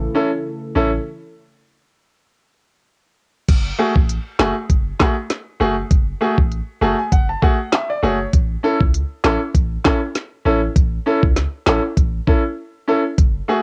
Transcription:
0.00 1.04 C#3 medium
0.00 1.04 E3 medium
0.00 1.04 A3 medium
0.00 1.04 E4 medium
0.00 1.04 A4 medium
0.15 0.29 C#4 medium
0.15 0.29 E4 medium
0.15 0.29 A4 medium
0.75 0.99 A1 medium
0.75 0.89 C#4 medium
0.75 0.89 E4 medium
0.75 0.89 A4 loud
3.48 3.71 F#1 loud
3.48 kick loud
3.48 closed hi-hat medium
3.48 crash medium
3.78 3.92 A3 medium
3.78 3.92 F#4 medium
3.78 3.93 G#4 medium
3.96 4.18 A1 medium
3.96 kick medium
4.09 closed hi-hat medium
4.39 4.52 F#1 medium
4.39 4.53 A3 medium
4.39 4.53 F#4 medium
4.39 4.53 G#4 medium
4.39 snare loud
4.39 clap medium
4.70 4.92 F#1 loud
4.70 kick loud
4.70 closed hi-hat medium
5.00 5.13 A3 medium
5.00 5.14 F#4 medium
5.00 5.14 G#4 medium
5.00 kick loud
5.00 snare loud
5.00 clap loud
5.30 snare medium
5.30 closed hi-hat medium
5.60 5.83 F#1 medium
5.60 5.74 A3 medium
5.60 5.74 F#4 medium
5.60 5.74 G#4 medium
5.91 6.14 F#1 loud
5.91 kick loud
5.91 closed hi-hat medium
6.21 6.35 A3 medium
6.21 6.35 F#4 medium
6.21 6.35 G#4 medium
6.38 6.61 A1 medium
6.38 kick loud
6.52 closed hi-hat medium
6.81 6.94 F#1 medium
6.81 6.95 A3 medium
6.81 6.95 F#4 medium
6.81 6.96 G#4 medium
6.81 6.98 A5 medium
6.99 7.11 G#5 medium
7.12 7.35 F#1 loud
7.12 7.28 F#5 medium
7.12 kick loud
7.12 closed hi-hat medium
7.29 7.42 A5 medium
7.42 7.56 A3 medium
7.42 7.56 F#4 medium
7.42 7.56 G#4 medium
7.42 7.71 F#5 medium
7.42 kick loud
7.72 7.89 E5 medium
7.72 snare loud
7.72 clap medium
7.72 closed hi-hat medium
7.90 8.02 D5 medium
8.03 8.26 F#1 medium
8.03 8.16 A3 medium
8.03 8.17 F#4 medium
8.03 8.17 G#4 medium
8.03 8.31 C#5 medium
8.33 8.56 A1 loud
8.33 kick loud
8.33 closed hi-hat medium
8.63 8.77 C#4 medium
8.63 8.77 E4 medium
8.63 8.77 A4 loud
8.80 9.03 C#2 medium
8.80 kick loud
8.94 closed hi-hat medium
9.24 9.37 A1 medium
9.24 9.38 C#4 medium
9.24 9.38 E4 medium
9.24 9.38 A4 medium
9.24 snare loud
9.24 clap medium
9.55 9.77 A1 loud
9.55 kick loud
9.55 closed hi-hat medium
9.85 9.98 C#4 medium
9.85 9.99 E4 medium
9.85 9.99 A4 medium
9.85 kick loud
9.85 snare loud
9.85 clap medium
10.15 snare medium
10.15 closed hi-hat medium
10.45 10.68 A1 loud
10.45 10.59 C#4 medium
10.45 10.59 E4 medium
10.45 10.59 A4 medium
10.76 10.99 A1 loud
10.76 kick loud
10.76 closed hi-hat medium
11.06 11.20 C#4 medium
11.06 11.20 E4 medium
11.06 11.20 A4 medium
11.23 11.46 C#2 medium
11.23 kick loud
11.36 snare medium
11.36 closed hi-hat medium
11.66 11.80 A1 medium
11.66 11.80 C#4 medium
11.66 11.80 E4 medium
11.66 11.81 A4 medium
11.66 snare loud
11.66 clap medium
11.97 12.20 A1 loud
11.97 kick loud
11.97 closed hi-hat medium
12.27 12.41 C#4 medium
12.27 12.41 E4 medium
12.27 12.41 A4 medium
12.27 kick loud
12.88 13.01 C#4 medium
12.88 13.02 E4 medium
12.88 13.02 A4 medium
13.18 13.41 F#1 loud
13.18 kick loud
13.18 closed hi-hat medium
13.48 13.62 A3 medium
13.48 13.62 F#4 medium
13.48 13.62 G#4 medium

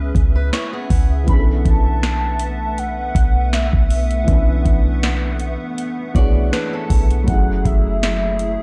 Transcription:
0.00 0.12 C#2 loud
0.00 1.22 E3 medium
0.00 1.23 G#3 medium
0.00 1.24 B3 medium
0.00 1.25 C#4 medium
0.00 1.24 G#4 medium
0.00 1.26 G#4 medium
0.00 1.25 B4 medium
0.00 7.24 E5 medium
0.15 0.51 C#2 loud
0.15 kick loud
0.15 closed hi-hat medium
0.36 0.52 B4 medium
0.53 0.72 E4 medium
0.53 0.72 C#5 medium
0.53 snare loud
0.53 closed hi-hat medium
0.73 1.25 B3 medium
0.73 1.25 G#4 medium
0.90 1.26 C#2 loud
0.90 kick medium
0.90 open hi-hat medium
1.24 4.22 E3 medium
1.24 4.23 B3 medium
1.24 kick loud
1.24 closed hi-hat medium
1.28 1.64 B1 loud
1.28 7.24 A3 medium
1.28 7.24 B3 medium
1.28 4.24 C#4 medium
1.28 4.25 D4 medium
1.28 7.24 B4 medium
1.28 7.24 F#5 medium
1.28 1.43 B5 loud
1.33 1.37 G#4 medium
1.39 4.30 A4 medium
1.65 3.11 B1 medium
1.65 2.80 A5 loud
1.65 kick medium
1.65 closed hi-hat medium
2.03 snare loud
2.03 closed hi-hat medium
2.39 closed hi-hat medium
2.78 3.55 F#5 loud
2.78 closed hi-hat medium
3.15 3.71 B1 loud
3.15 kick loud
3.15 closed hi-hat medium
3.53 3.91 E5 medium
3.53 snare loud
3.53 closed hi-hat medium
3.73 4.26 B1 loud
3.73 kick medium
3.90 5.37 E5 loud
3.90 closed hi-hat medium
3.90 open hi-hat medium
4.11 closed hi-hat medium
4.24 4.64 B1 loud
4.24 6.10 E3 medium
4.24 6.11 B3 medium
4.24 kick loud
4.24 closed hi-hat medium
4.29 6.12 C#4 medium
4.29 6.13 D4 medium
4.33 6.14 B4 medium
4.65 5.57 B1 loud
4.65 kick loud
4.65 closed hi-hat medium
5.03 snare loud
5.03 closed hi-hat medium
5.40 closed hi-hat medium
5.78 closed hi-hat medium
6.14 6.51 B1 loud
6.14 7.27 E3 medium
6.14 7.28 B3 medium
6.14 7.29 D4 medium
6.14 6.51 F#4 medium
6.14 7.28 C#5 medium
6.14 6.51 D5 medium
6.14 kick loud
6.14 closed hi-hat medium
6.18 7.29 G#4 medium
6.53 6.72 D4 medium
6.53 6.72 B4 medium
6.53 snare loud
6.53 closed hi-hat medium
6.73 7.25 C#4 medium
6.73 7.25 A4 medium
6.90 7.26 B1 loud
6.90 kick medium
6.90 closed hi-hat medium
6.90 open hi-hat medium
7.11 closed hi-hat medium
7.24 8.63 F#3 medium
7.24 8.63 A3 medium
7.24 8.63 E4 medium
7.24 8.63 G#4 medium
7.24 kick loud
7.24 closed hi-hat medium
7.28 7.64 F#1 loud
7.28 8.63 C#4 medium
7.28 8.63 E4 medium
7.28 7.67 F#5 loud
7.33 8.63 G#4 medium
7.65 8.57 F#1 loud
7.65 8.63 E5 loud
7.65 kick loud
7.65 closed hi-hat medium
8.03 snare loud
8.03 closed hi-hat medium
8.39 closed hi-hat medium

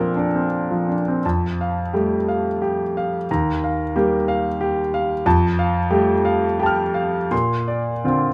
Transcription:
0.00 1.19 A#2 soft
0.00 0.71 F3 soft
0.00 1.26 A#3 soft
0.00 0.35 C4 soft
0.00 0.17 D4 soft
0.00 1.26 A4 medium
0.00 0.88 A#4 soft
0.17 0.45 D4 soft
0.35 0.92 C4 soft
0.71 1.00 F3 soft
0.89 1.17 D4 soft
1.08 1.25 C4 soft
1.25 1.92 F2 soft
1.25 1.80 A5 soft
1.61 2.15 F5 soft
1.93 3.25 G3 soft
1.93 3.25 A3 soft
1.93 2.48 G4 soft
2.28 2.82 F5 soft
2.62 3.15 G4 soft
2.97 3.30 F5 soft
3.31 3.94 D#2 soft
3.31 3.83 A#5 soft
3.64 4.15 F5 soft
3.96 5.21 G3 soft
3.96 5.22 A#3 soft
3.96 4.48 G4 soft
4.28 4.80 F5 soft
4.61 5.12 G4 soft
4.94 5.26 F5 soft
5.26 5.90 F2 medium
5.26 5.78 A5 medium
5.59 6.12 F5 soft
5.91 7.28 G3 soft
5.91 7.28 A3 soft
5.91 6.46 G4 soft
6.25 6.81 F5 soft
6.59 7.17 G4 soft
6.59 7.28 G5 soft
6.59 7.29 A5 soft
6.66 7.31 F6 soft
6.94 7.31 F5 soft
7.31 8.03 A#2 soft
7.31 7.91 C6 soft
7.68 8.27 D5 soft
8.04 8.33 D3 soft
8.04 8.33 C4 soft
8.04 8.33 F4 soft

